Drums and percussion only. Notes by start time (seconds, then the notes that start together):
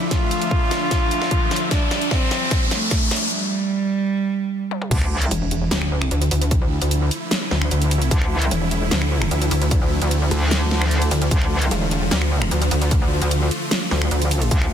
0.11 kick, snare, closed hi-hat
0.31 closed hi-hat
0.42 closed hi-hat
0.51 kick
0.71 snare, closed hi-hat
0.91 kick, snare, closed hi-hat
1.11 closed hi-hat
1.22 snare
1.31 kick, closed hi-hat
1.51 snare, closed hi-hat
1.56 closed hi-hat
1.71 kick, snare, closed hi-hat
1.91 snare, closed hi-hat
2.02 closed hi-hat
2.11 kick, snare
2.31 snare, closed hi-hat
2.51 kick, snare, closed hi-hat
2.71 snare, closed hi-hat
2.91 kick, snare, closed hi-hat
3.11 snare, closed hi-hat
3.16 closed hi-hat
4.71 high tom
4.82 mid tom
4.91 kick, closed hi-hat, crash
5.02 finger snap
5.22 closed hi-hat
5.31 closed hi-hat
5.51 closed hi-hat
5.71 snare, closed hi-hat
5.82 finger snap
6.02 finger snap
6.11 closed hi-hat
6.22 closed hi-hat
6.31 open hi-hat
6.42 closed hi-hat
6.51 kick, closed hi-hat
6.82 closed hi-hat
6.91 closed hi-hat
7.11 closed hi-hat
7.31 snare, closed hi-hat
7.51 snare
7.62 finger snap
7.71 closed hi-hat
7.82 closed hi-hat
7.91 open hi-hat
8.02 closed hi-hat
8.11 kick, closed hi-hat
8.22 finger snap
8.42 closed hi-hat
8.51 closed hi-hat
8.71 closed hi-hat
8.91 snare, closed hi-hat
9.02 finger snap
9.22 finger snap
9.31 closed hi-hat
9.42 closed hi-hat
9.51 open hi-hat
9.62 closed hi-hat
9.71 kick, closed hi-hat
10.02 closed hi-hat
10.11 closed hi-hat
10.31 closed hi-hat
10.51 snare, closed hi-hat
10.71 snare
10.82 finger snap
10.91 closed hi-hat
11.02 closed hi-hat
11.11 open hi-hat
11.22 closed hi-hat
11.31 kick, closed hi-hat
11.42 finger snap
11.62 closed hi-hat
11.71 closed hi-hat
11.91 closed hi-hat
12.11 snare, closed hi-hat
12.22 finger snap
12.42 finger snap
12.51 closed hi-hat
12.62 closed hi-hat
12.71 open hi-hat
12.82 closed hi-hat
12.91 kick, closed hi-hat
13.22 closed hi-hat
13.31 closed hi-hat
13.51 closed hi-hat
13.71 snare, closed hi-hat
13.91 snare
14.02 finger snap
14.11 closed hi-hat
14.22 closed hi-hat
14.31 open hi-hat
14.42 closed hi-hat
14.51 kick, closed hi-hat
14.62 finger snap